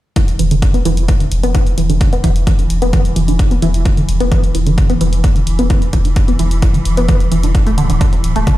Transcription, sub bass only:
0, 0, Header, 1, 2, 480
1, 0, Start_track
1, 0, Tempo, 461538
1, 168, Time_signature, 4, 2, 24, 8
1, 8921, End_track
2, 0, Start_track
2, 0, Title_t, "Sub bass"
2, 0, Program_c, 0, 38
2, 292, Note_on_c, 0, 28, 72
2, 402, Note_off_c, 0, 28, 0
2, 408, Note_on_c, 0, 28, 93
2, 526, Note_off_c, 0, 28, 0
2, 532, Note_on_c, 0, 28, 73
2, 646, Note_off_c, 0, 28, 0
2, 889, Note_on_c, 0, 28, 100
2, 1005, Note_off_c, 0, 28, 0
2, 1012, Note_on_c, 0, 28, 82
2, 1126, Note_off_c, 0, 28, 0
2, 1252, Note_on_c, 0, 28, 75
2, 1362, Note_off_c, 0, 28, 0
2, 1368, Note_on_c, 0, 28, 97
2, 1485, Note_off_c, 0, 28, 0
2, 1492, Note_on_c, 0, 28, 85
2, 1606, Note_off_c, 0, 28, 0
2, 1848, Note_on_c, 0, 28, 101
2, 1965, Note_off_c, 0, 28, 0
2, 1972, Note_on_c, 0, 28, 74
2, 2086, Note_off_c, 0, 28, 0
2, 2212, Note_on_c, 0, 28, 72
2, 2322, Note_off_c, 0, 28, 0
2, 2328, Note_on_c, 0, 28, 93
2, 2445, Note_off_c, 0, 28, 0
2, 2452, Note_on_c, 0, 28, 79
2, 2566, Note_off_c, 0, 28, 0
2, 2808, Note_on_c, 0, 28, 95
2, 2926, Note_off_c, 0, 28, 0
2, 2932, Note_on_c, 0, 28, 77
2, 3046, Note_off_c, 0, 28, 0
2, 3171, Note_on_c, 0, 28, 75
2, 3282, Note_off_c, 0, 28, 0
2, 3288, Note_on_c, 0, 28, 98
2, 3406, Note_off_c, 0, 28, 0
2, 3412, Note_on_c, 0, 28, 84
2, 3526, Note_off_c, 0, 28, 0
2, 3768, Note_on_c, 0, 28, 96
2, 3886, Note_off_c, 0, 28, 0
2, 3892, Note_on_c, 0, 28, 76
2, 4006, Note_off_c, 0, 28, 0
2, 4132, Note_on_c, 0, 28, 73
2, 4242, Note_off_c, 0, 28, 0
2, 4248, Note_on_c, 0, 28, 95
2, 4366, Note_off_c, 0, 28, 0
2, 4372, Note_on_c, 0, 28, 78
2, 4486, Note_off_c, 0, 28, 0
2, 4729, Note_on_c, 0, 28, 96
2, 4846, Note_off_c, 0, 28, 0
2, 4852, Note_on_c, 0, 28, 80
2, 4966, Note_off_c, 0, 28, 0
2, 5092, Note_on_c, 0, 28, 76
2, 5202, Note_off_c, 0, 28, 0
2, 5208, Note_on_c, 0, 28, 95
2, 5326, Note_off_c, 0, 28, 0
2, 5332, Note_on_c, 0, 28, 86
2, 5446, Note_off_c, 0, 28, 0
2, 5688, Note_on_c, 0, 28, 98
2, 5806, Note_off_c, 0, 28, 0
2, 5812, Note_on_c, 0, 28, 74
2, 5926, Note_off_c, 0, 28, 0
2, 6052, Note_on_c, 0, 28, 75
2, 6162, Note_off_c, 0, 28, 0
2, 6168, Note_on_c, 0, 28, 96
2, 6286, Note_off_c, 0, 28, 0
2, 6292, Note_on_c, 0, 28, 74
2, 6406, Note_off_c, 0, 28, 0
2, 6648, Note_on_c, 0, 28, 100
2, 6766, Note_off_c, 0, 28, 0
2, 6772, Note_on_c, 0, 28, 81
2, 6886, Note_off_c, 0, 28, 0
2, 7013, Note_on_c, 0, 28, 76
2, 7122, Note_off_c, 0, 28, 0
2, 7128, Note_on_c, 0, 28, 96
2, 7246, Note_off_c, 0, 28, 0
2, 7252, Note_on_c, 0, 28, 85
2, 7366, Note_off_c, 0, 28, 0
2, 7608, Note_on_c, 0, 28, 97
2, 7726, Note_off_c, 0, 28, 0
2, 7732, Note_on_c, 0, 28, 78
2, 7846, Note_off_c, 0, 28, 0
2, 7972, Note_on_c, 0, 26, 78
2, 8082, Note_off_c, 0, 26, 0
2, 8089, Note_on_c, 0, 26, 92
2, 8206, Note_off_c, 0, 26, 0
2, 8213, Note_on_c, 0, 26, 80
2, 8327, Note_off_c, 0, 26, 0
2, 8569, Note_on_c, 0, 26, 101
2, 8687, Note_off_c, 0, 26, 0
2, 8693, Note_on_c, 0, 26, 83
2, 8807, Note_off_c, 0, 26, 0
2, 8921, End_track
0, 0, End_of_file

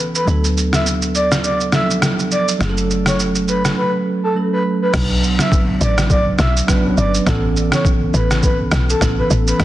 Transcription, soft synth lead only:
0, 0, Header, 1, 2, 480
1, 0, Start_track
1, 0, Key_signature, 2, "minor"
1, 0, Tempo, 582524
1, 227, Time_signature, 4, 2, 24, 8
1, 7948, End_track
2, 0, Start_track
2, 0, Title_t, "Soft synth lead"
2, 0, Program_c, 0, 80
2, 130, Note_on_c, 0, 71, 81
2, 214, Note_off_c, 0, 71, 0
2, 610, Note_on_c, 0, 76, 80
2, 694, Note_off_c, 0, 76, 0
2, 950, Note_on_c, 0, 74, 78
2, 1067, Note_off_c, 0, 74, 0
2, 1189, Note_on_c, 0, 74, 80
2, 1307, Note_off_c, 0, 74, 0
2, 1429, Note_on_c, 0, 76, 73
2, 1547, Note_off_c, 0, 76, 0
2, 1911, Note_on_c, 0, 74, 84
2, 2028, Note_off_c, 0, 74, 0
2, 2530, Note_on_c, 0, 73, 80
2, 2614, Note_off_c, 0, 73, 0
2, 2871, Note_on_c, 0, 71, 76
2, 2988, Note_off_c, 0, 71, 0
2, 3110, Note_on_c, 0, 71, 81
2, 3227, Note_off_c, 0, 71, 0
2, 3489, Note_on_c, 0, 69, 77
2, 3574, Note_off_c, 0, 69, 0
2, 3730, Note_on_c, 0, 71, 87
2, 3814, Note_off_c, 0, 71, 0
2, 3972, Note_on_c, 0, 71, 77
2, 4055, Note_off_c, 0, 71, 0
2, 4451, Note_on_c, 0, 76, 83
2, 4535, Note_off_c, 0, 76, 0
2, 4792, Note_on_c, 0, 74, 75
2, 4908, Note_off_c, 0, 74, 0
2, 5033, Note_on_c, 0, 74, 82
2, 5149, Note_off_c, 0, 74, 0
2, 5271, Note_on_c, 0, 76, 77
2, 5388, Note_off_c, 0, 76, 0
2, 5753, Note_on_c, 0, 74, 91
2, 5869, Note_off_c, 0, 74, 0
2, 6371, Note_on_c, 0, 73, 85
2, 6455, Note_off_c, 0, 73, 0
2, 6711, Note_on_c, 0, 71, 71
2, 6828, Note_off_c, 0, 71, 0
2, 6951, Note_on_c, 0, 71, 86
2, 7068, Note_off_c, 0, 71, 0
2, 7330, Note_on_c, 0, 69, 76
2, 7414, Note_off_c, 0, 69, 0
2, 7571, Note_on_c, 0, 71, 85
2, 7655, Note_off_c, 0, 71, 0
2, 7810, Note_on_c, 0, 71, 80
2, 7894, Note_off_c, 0, 71, 0
2, 7948, End_track
0, 0, End_of_file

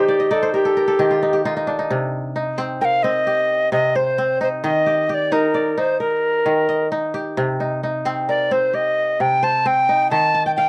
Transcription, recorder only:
0, 0, Header, 1, 2, 480
1, 0, Start_track
1, 0, Tempo, 456274
1, 2002, Time_signature, 12, 3, 24, 8
1, 11245, End_track
2, 0, Start_track
2, 0, Title_t, "Recorder"
2, 0, Program_c, 0, 74
2, 0, Note_on_c, 0, 67, 80
2, 336, Note_on_c, 0, 69, 75
2, 351, Note_off_c, 0, 67, 0
2, 562, Note_off_c, 0, 69, 0
2, 568, Note_on_c, 0, 67, 71
2, 1482, Note_off_c, 0, 67, 0
2, 2957, Note_on_c, 0, 79, 83
2, 2997, Note_on_c, 0, 77, 90
2, 3008, Note_off_c, 0, 79, 0
2, 3187, Note_on_c, 0, 75, 99
2, 3202, Note_off_c, 0, 77, 0
2, 3912, Note_off_c, 0, 75, 0
2, 3919, Note_on_c, 0, 75, 96
2, 4165, Note_on_c, 0, 72, 85
2, 4181, Note_off_c, 0, 75, 0
2, 4641, Note_off_c, 0, 72, 0
2, 4652, Note_on_c, 0, 72, 84
2, 4715, Note_off_c, 0, 72, 0
2, 4877, Note_on_c, 0, 75, 92
2, 5373, Note_off_c, 0, 75, 0
2, 5373, Note_on_c, 0, 75, 76
2, 5411, Note_on_c, 0, 74, 83
2, 5421, Note_off_c, 0, 75, 0
2, 5603, Note_on_c, 0, 70, 76
2, 5618, Note_off_c, 0, 74, 0
2, 6084, Note_on_c, 0, 72, 74
2, 6100, Note_off_c, 0, 70, 0
2, 6317, Note_off_c, 0, 72, 0
2, 6323, Note_on_c, 0, 70, 71
2, 7238, Note_off_c, 0, 70, 0
2, 8719, Note_on_c, 0, 74, 79
2, 8966, Note_on_c, 0, 72, 74
2, 8982, Note_off_c, 0, 74, 0
2, 9202, Note_on_c, 0, 75, 88
2, 9218, Note_off_c, 0, 72, 0
2, 9687, Note_on_c, 0, 79, 97
2, 9703, Note_off_c, 0, 75, 0
2, 9928, Note_on_c, 0, 81, 101
2, 9943, Note_off_c, 0, 79, 0
2, 10171, Note_on_c, 0, 79, 93
2, 10187, Note_off_c, 0, 81, 0
2, 10629, Note_off_c, 0, 79, 0
2, 10635, Note_on_c, 0, 81, 102
2, 10975, Note_off_c, 0, 81, 0
2, 11012, Note_on_c, 0, 79, 81
2, 11064, Note_off_c, 0, 79, 0
2, 11111, Note_on_c, 0, 79, 104
2, 11245, Note_off_c, 0, 79, 0
2, 11245, End_track
0, 0, End_of_file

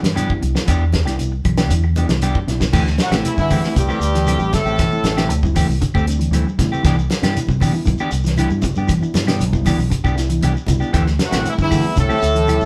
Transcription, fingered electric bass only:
0, 0, Header, 1, 3, 480
1, 0, Start_track
1, 0, Tempo, 513259
1, 636, Time_signature, 4, 2, 24, 8
1, 11833, End_track
2, 0, Start_track
2, 0, Title_t, "Fingered electric bass"
2, 0, Program_c, 0, 33
2, 29, Note_on_c, 0, 43, 73
2, 245, Note_off_c, 0, 43, 0
2, 403, Note_on_c, 0, 36, 82
2, 507, Note_off_c, 0, 36, 0
2, 639, Note_on_c, 0, 40, 83
2, 986, Note_off_c, 0, 40, 0
2, 986, Note_on_c, 0, 36, 82
2, 1308, Note_off_c, 0, 36, 0
2, 1356, Note_on_c, 0, 35, 77
2, 1596, Note_off_c, 0, 35, 0
2, 1596, Note_on_c, 0, 40, 89
2, 1916, Note_off_c, 0, 40, 0
2, 1953, Note_on_c, 0, 36, 77
2, 2168, Note_off_c, 0, 36, 0
2, 2314, Note_on_c, 0, 35, 79
2, 2528, Note_off_c, 0, 35, 0
2, 2556, Note_on_c, 0, 38, 105
2, 2769, Note_off_c, 0, 38, 0
2, 2909, Note_on_c, 0, 33, 81
2, 3019, Note_off_c, 0, 33, 0
2, 3157, Note_on_c, 0, 50, 79
2, 3370, Note_off_c, 0, 50, 0
2, 3518, Note_on_c, 0, 36, 110
2, 3625, Note_off_c, 0, 36, 0
2, 3742, Note_on_c, 0, 38, 94
2, 4068, Note_off_c, 0, 38, 0
2, 4105, Note_on_c, 0, 33, 86
2, 4217, Note_off_c, 0, 33, 0
2, 4349, Note_on_c, 0, 33, 75
2, 4566, Note_off_c, 0, 33, 0
2, 4709, Note_on_c, 0, 33, 88
2, 4945, Note_off_c, 0, 33, 0
2, 4945, Note_on_c, 0, 38, 94
2, 5270, Note_off_c, 0, 38, 0
2, 5317, Note_on_c, 0, 36, 86
2, 5423, Note_off_c, 0, 36, 0
2, 5556, Note_on_c, 0, 38, 82
2, 5874, Note_off_c, 0, 38, 0
2, 5901, Note_on_c, 0, 38, 108
2, 6016, Note_off_c, 0, 38, 0
2, 6158, Note_on_c, 0, 33, 85
2, 6265, Note_off_c, 0, 33, 0
2, 6400, Note_on_c, 0, 36, 105
2, 6611, Note_off_c, 0, 36, 0
2, 6759, Note_on_c, 0, 43, 88
2, 6864, Note_off_c, 0, 43, 0
2, 6999, Note_on_c, 0, 48, 82
2, 7210, Note_off_c, 0, 48, 0
2, 7359, Note_on_c, 0, 35, 113
2, 7465, Note_off_c, 0, 35, 0
2, 7594, Note_on_c, 0, 36, 100
2, 7914, Note_off_c, 0, 36, 0
2, 7954, Note_on_c, 0, 43, 91
2, 8061, Note_off_c, 0, 43, 0
2, 8194, Note_on_c, 0, 43, 77
2, 8408, Note_off_c, 0, 43, 0
2, 8554, Note_on_c, 0, 43, 84
2, 8802, Note_on_c, 0, 36, 103
2, 8816, Note_off_c, 0, 43, 0
2, 9118, Note_off_c, 0, 36, 0
2, 9144, Note_on_c, 0, 35, 89
2, 9256, Note_off_c, 0, 35, 0
2, 9393, Note_on_c, 0, 36, 80
2, 9712, Note_off_c, 0, 36, 0
2, 9754, Note_on_c, 0, 36, 102
2, 9862, Note_off_c, 0, 36, 0
2, 9989, Note_on_c, 0, 36, 84
2, 10100, Note_off_c, 0, 36, 0
2, 10229, Note_on_c, 0, 38, 98
2, 10444, Note_off_c, 0, 38, 0
2, 10590, Note_on_c, 0, 33, 79
2, 10699, Note_off_c, 0, 33, 0
2, 10833, Note_on_c, 0, 50, 85
2, 11047, Note_off_c, 0, 50, 0
2, 11196, Note_on_c, 0, 36, 102
2, 11303, Note_off_c, 0, 36, 0
2, 11433, Note_on_c, 0, 38, 94
2, 11754, Note_off_c, 0, 38, 0
2, 11800, Note_on_c, 0, 33, 90
2, 11833, Note_off_c, 0, 33, 0
2, 11833, End_track
3, 0, Start_track
3, 0, Title_t, "Muted fingered electric bass strokes"
3, 3634, Note_on_c, 9, 29, 35
3, 3727, Note_off_c, 9, 29, 0
3, 11319, Note_on_c, 9, 29, 35
3, 11413, Note_off_c, 9, 29, 0
3, 11833, End_track
0, 0, End_of_file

